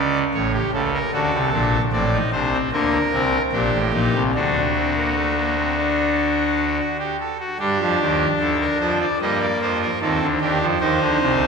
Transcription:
0.00 0.24 C#2 medium
0.00 0.23 C#3 medium
0.00 0.19 D5 medium
0.34 0.59 A1 medium
0.34 0.59 A2 medium
0.34 0.51 C#5 medium
0.54 0.71 G4 medium
0.73 0.98 C#2 medium
0.73 0.98 C#3 medium
0.73 0.91 A4 medium
0.93 1.11 A#4 medium
1.13 1.31 D2 medium
1.13 1.31 D3 loud
1.13 1.38 F#4 medium
1.13 1.82 A4 medium
1.32 1.50 C2 medium
1.32 1.50 C3 medium
1.53 1.78 A#1 medium
1.53 1.78 A#2 medium
1.53 1.77 D4 medium
1.92 2.17 A1 medium
1.92 2.18 A2 medium
1.92 2.10 C4 medium
1.92 2.17 D5 medium
2.12 2.30 D#4 medium
2.32 2.57 C2 medium
2.32 2.57 C3 medium
2.32 2.50 D4 medium
2.32 2.57 C5 medium
2.52 2.70 C4 medium
2.72 2.97 D2 medium
2.72 2.97 D3 medium
2.72 2.97 A#3 medium
2.72 3.42 A#4 medium
3.13 3.38 C2 medium
3.13 3.38 C3 medium
3.13 3.38 C4 medium
3.52 3.70 A#1 medium
3.52 3.70 A#2 medium
3.52 3.78 D4 medium
3.52 4.23 G4 medium
3.73 3.91 A1 medium
3.73 3.91 A2 medium
3.93 4.11 A#1 medium
3.93 4.11 A#2 medium
3.93 4.19 D#4 medium
4.14 4.32 C2 medium
4.14 4.31 C3 medium
4.35 6.80 D2 medium
4.35 6.80 D3 medium
4.35 4.60 D4 medium
4.35 6.77 F#4 medium
4.75 4.93 C4 medium
4.96 5.13 A#3 medium
5.15 5.33 A3 medium
5.36 5.54 A#3 medium
5.56 5.74 C4 medium
5.77 6.65 D4 medium
6.79 6.97 F#4 medium
6.99 7.17 G4 medium
7.20 7.37 A4 medium
7.40 7.57 F#4 medium
7.59 7.77 G2 loud
7.59 7.77 G3 medium
7.59 8.98 D4 medium
7.59 8.29 G4 medium
7.80 7.98 F2 medium
7.80 7.98 F3 medium
8.00 8.25 D#2 medium
8.00 8.25 D#3 medium
8.40 8.65 D2 medium
8.40 8.65 D3 medium
8.40 8.58 A4 medium
8.60 8.78 A#4 medium
8.80 9.05 F2 medium
8.80 9.05 F3 medium
8.80 8.98 C5 medium
9.01 9.18 D5 medium
9.21 9.46 G2 loud
9.21 9.46 G3 loud
9.21 9.90 A#3 medium
9.21 9.38 D#5 medium
9.41 9.58 D5 medium
9.61 9.86 F2 medium
9.61 9.86 F3 medium
9.61 9.78 C5 medium
9.82 9.99 A#4 medium
10.01 10.19 D#2 medium
10.01 10.19 D#3 medium
10.01 10.26 C4 medium
10.01 10.26 A4 medium
10.21 10.38 D2 medium
10.21 10.39 D3 medium
10.41 10.58 D#2 medium
10.41 10.58 D#3 medium
10.41 10.66 D4 medium
10.41 10.66 G4 medium
10.60 10.78 F2 medium
10.60 10.78 F3 medium
10.80 10.98 D#2 loud
10.80 10.98 D#3 loud
10.80 11.47 D#4 medium
10.80 11.47 C5 medium
11.00 11.18 D2 medium
11.00 11.18 D3 medium
11.20 11.45 C2 medium
11.20 11.45 C3 medium

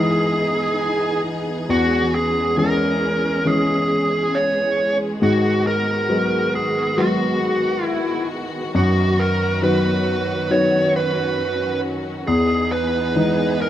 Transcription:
0.00 1.65 E2 medium
0.00 1.70 E3 soft
0.00 5.17 E3 medium
0.00 1.70 G#3 soft
0.00 1.65 B3 medium
0.00 1.66 D#4 soft
0.00 1.71 D#4 soft
0.00 1.20 G#4 medium
0.00 5.18 G#4 medium
1.68 5.18 E2 medium
1.68 8.70 G#3 medium
1.68 5.18 C#4 medium
1.68 2.15 F#4 medium
2.15 2.55 G#4 medium
2.57 3.42 E3 soft
2.57 3.43 G#3 soft
2.57 3.43 C#4 soft
2.57 3.49 A#4 medium
3.45 4.31 E3 soft
3.45 4.31 G#3 soft
3.45 4.31 C#4 soft
3.45 4.37 G#4 medium
4.35 4.96 C#5 medium
5.22 8.71 G#2 medium
5.22 12.24 D#3 medium
5.22 8.71 B3 medium
5.22 12.24 F#4 medium
5.22 5.67 F#4 medium
5.67 6.55 A#4 medium
6.09 6.95 F#3 soft
6.09 6.95 G#3 soft
6.09 6.95 B3 soft
6.55 7.00 G#4 medium
6.98 7.83 F#3 soft
6.98 7.84 G#3 soft
6.98 7.84 B3 soft
6.98 7.85 F#4 medium
7.85 8.26 E4 medium
8.74 12.24 F#2 medium
8.74 12.23 F#2 medium
8.74 12.24 F#3 medium
8.74 10.49 B3 medium
8.74 9.21 F#4 medium
9.20 9.60 A#4 medium
9.62 10.48 D#3 soft
9.62 10.49 F#3 soft
9.62 10.49 B3 soft
9.62 10.54 B4 medium
10.50 11.36 D#3 soft
10.50 11.37 F#3 soft
10.50 11.37 B3 soft
10.50 12.25 C#4 medium
10.50 10.92 C#5 medium
10.96 11.80 B4 medium
12.26 13.69 E2 medium
12.26 13.69 E3 medium
12.26 13.69 B3 medium
12.26 13.69 D#4 medium
12.26 13.69 G#4 medium
12.26 12.72 G#4 medium
12.72 13.61 B4 medium
13.15 13.69 E3 soft
13.15 13.69 G#3 soft
13.15 13.69 D#4 soft
13.62 13.69 A#4 medium

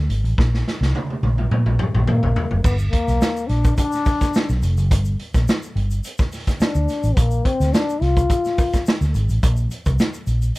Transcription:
0.09 0.22 G#1 medium
0.09 closed hi-hat medium
0.24 0.35 A1 medium
0.24 closed hi-hat soft
0.38 0.61 A#1 loud
0.38 kick loud
0.38 snare medium
0.54 snare medium
0.68 snare medium
0.81 0.92 C2 loud
0.81 snare medium
0.95 high tom medium
1.10 high tom medium
1.23 1.46 A#1 medium
1.23 high tom medium
1.38 mid tom medium
1.51 1.64 A#2 loud
1.51 mid tom medium
1.66 1.77 A#1 medium
1.66 mid tom medium
1.79 mid tom medium
1.95 2.05 A#1 medium
1.95 mid tom medium
2.07 2.20 A#2 loud
2.07 2.60 A#3 medium
2.07 mid tom loud
2.23 2.34 A#1 medium
2.23 floor tom medium
2.36 floor tom loud
2.51 2.62 F#1 medium
2.51 floor tom medium
2.63 2.87 G1 loud
2.63 2.76 B3 medium
2.63 kick loud
2.63 crash medium
2.63 shaker medium
2.78 closed hi-hat soft
2.78 shaker medium
2.91 3.49 A#3 loud
2.91 kick medium
2.91 closed hi-hat medium
3.08 3.19 B1 medium
3.08 snare soft
3.08 closed hi-hat medium
3.08 shaker medium
3.22 snare loud
3.22 shaker medium
3.36 closed hi-hat soft
3.36 shaker medium
3.47 3.72 A#1 medium
3.47 3.76 D4 medium
3.47 snare soft
3.47 closed hi-hat medium
3.64 kick medium
3.64 closed hi-hat soft
3.64 shaker medium
3.77 4.58 D4 loud
3.77 kick medium
3.77 closed hi-hat medium
3.77 shaker medium
3.92 snare soft
3.92 closed hi-hat soft
3.92 shaker medium
4.06 kick medium
4.06 open hi-hat medium
4.06 shaker medium
4.21 kick medium
4.21 snare soft
4.21 closed hi-hat medium
4.21 shaker medium
4.34 snare loud
4.34 shaker medium
4.49 4.60 B1 medium
4.49 snare soft
4.49 shaker medium
4.62 4.77 F1 loud
4.62 closed hi-hat medium
4.62 shaker medium
4.77 4.91 F#1 medium
4.77 closed hi-hat medium
4.77 shaker medium
4.91 5.14 G1 loud
4.91 kick loud
4.91 closed hi-hat loud
4.91 shaker medium
5.05 closed hi-hat soft
5.05 shaker medium
5.19 closed hi-hat medium
5.34 5.45 A#1 loud
5.34 kick loud
5.34 snare soft
5.34 closed hi-hat soft
5.34 shaker medium
5.48 snare loud
5.48 shaker medium
5.63 closed hi-hat soft
5.63 shaker medium
5.76 5.98 G1 medium
5.76 closed hi-hat medium
5.91 closed hi-hat soft
5.91 shaker medium
6.04 closed hi-hat medium
6.04 shaker medium
6.18 kick loud
6.18 snare soft
6.18 closed hi-hat soft
6.18 shaker medium
6.32 snare soft
6.32 open hi-hat medium
6.32 shaker medium
6.47 kick medium
6.47 snare soft
6.47 closed hi-hat medium
6.47 shaker soft
6.60 7.18 D4 medium
6.60 muted fingered electric bass stroke soft
6.60 snare loud
6.60 shaker medium
6.75 6.86 D2 medium
6.75 shaker medium
6.88 snare soft
6.88 closed hi-hat medium
6.88 shaker medium
7.03 7.14 A1 medium
7.03 closed hi-hat medium
7.03 shaker medium
7.16 7.40 A#1 loud
7.16 7.47 A#3 loud
7.16 kick loud
7.16 closed hi-hat loud
7.16 shaker medium
7.31 closed hi-hat soft
7.31 shaker medium
7.45 7.75 C4 loud
7.45 kick medium
7.45 closed hi-hat medium
7.60 7.71 D2 medium
7.60 snare soft
7.60 closed hi-hat soft
7.60 shaker medium
7.73 8.03 D4 medium
7.73 snare loud
7.73 shaker medium
7.89 closed hi-hat soft
7.89 shaker medium
8.01 8.24 C2 medium
8.01 8.86 F4 loud
8.01 snare soft
8.01 closed hi-hat medium
8.16 kick medium
8.16 closed hi-hat soft
8.16 shaker medium
8.30 kick loud
8.30 closed hi-hat medium
8.30 shaker medium
8.45 snare soft
8.45 closed hi-hat soft
8.45 shaker soft
8.58 kick medium
8.58 open hi-hat medium
8.58 shaker medium
8.73 kick medium
8.73 snare soft
8.73 closed hi-hat medium
8.73 shaker medium
8.86 snare loud
8.86 shaker medium
9.01 9.12 D2 medium
9.01 snare soft
9.01 closed hi-hat soft
9.01 shaker medium
9.14 9.27 G#1 medium
9.14 closed hi-hat medium
9.14 shaker medium
9.29 9.40 A1 medium
9.29 closed hi-hat medium
9.29 shaker medium
9.43 9.66 A#1 loud
9.43 kick loud
9.43 closed hi-hat loud
9.43 shaker medium
9.57 closed hi-hat soft
9.57 shaker medium
9.71 closed hi-hat medium
9.71 shaker medium
9.86 9.97 C2 loud
9.86 kick loud
9.86 closed hi-hat soft
9.86 shaker medium
9.99 snare loud
9.99 shaker medium
10.14 closed hi-hat soft
10.14 shaker medium
10.27 10.50 A#1 medium
10.27 closed hi-hat medium
10.27 shaker medium
10.42 closed hi-hat soft
10.42 shaker medium
10.55 closed hi-hat medium

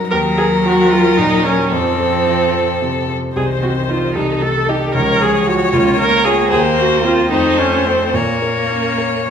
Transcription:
0.00 0.14 F#2 soft
0.00 0.14 F#3 soft
0.00 0.14 D#4 soft
0.00 0.14 A#4 soft
0.11 1.68 D#2 medium
0.11 1.74 F#3 medium
0.11 0.19 A#4 medium
0.11 1.68 A#4 medium
0.37 0.45 G#4 medium
0.37 0.81 A#4 soft
0.64 0.93 F#4 medium
0.64 1.08 F#4 soft
0.91 1.19 F4 medium
0.91 1.35 A#4 soft
1.17 1.61 A#2 soft
1.17 1.46 D#4 medium
1.45 1.73 C#4 medium
1.45 1.72 A#4 soft
1.71 3.32 F2 soft
1.71 3.16 F3 soft
1.71 3.09 C4 medium
1.71 3.13 A4 medium
1.99 2.43 A4 soft
2.27 2.71 F4 soft
2.54 2.98 A4 soft
2.82 3.26 C3 soft
3.09 3.36 A4 soft
3.36 4.13 C2 soft
3.36 4.91 D#3 soft
3.36 3.44 G#4 medium
3.36 4.12 C5 soft
3.63 4.05 C4 soft
3.63 3.71 F#4 soft
3.89 4.13 D#4 soft
3.89 4.17 F4 soft
3.89 4.13 C5 soft
4.15 4.92 C2 soft
4.15 4.44 D#4 medium
4.15 4.91 A4 soft
4.42 4.84 A3 soft
4.42 4.71 A4 medium
4.69 4.92 D#4 soft
4.69 4.94 G4 medium
4.69 4.92 D#5 soft
4.95 5.70 C#2 soft
4.95 5.69 F3 soft
4.95 5.23 A#4 medium
4.95 6.47 C#5 soft
5.21 5.63 G#3 soft
5.21 5.49 G#4 medium
5.47 5.70 F4 soft
5.47 5.75 F#4 medium
5.47 5.70 C#5 soft
5.73 6.49 C#2 medium
5.73 6.47 A#3 medium
5.73 5.99 F4 medium
5.99 6.41 A#3 soft
5.99 6.26 A#4 medium
6.25 6.49 F4 soft
6.25 6.51 G#4 medium
6.25 6.49 C#5 soft
6.50 7.29 D#2 medium
6.50 7.28 A#3 medium
6.50 6.59 G#4 medium
6.50 7.28 C5 medium
6.78 7.21 A#3 soft
6.78 7.04 F#4 medium
7.04 7.29 C4 soft
7.04 7.31 F4 medium
7.04 7.29 C5 soft
7.31 8.12 F2 medium
7.31 8.16 A3 medium
7.31 7.60 D#4 medium
7.31 8.15 C5 soft
7.59 8.03 A3 soft
7.59 7.88 C#4 medium
7.86 8.16 C4 soft
7.86 8.12 C4 soft
7.86 8.12 C5 soft
8.14 9.30 A#2 soft
8.14 9.30 A#3 soft
8.14 9.30 C#5 soft
8.42 8.87 A#4 soft
8.70 9.15 C#4 soft
8.98 9.30 A#4 soft
9.27 9.30 F3 soft

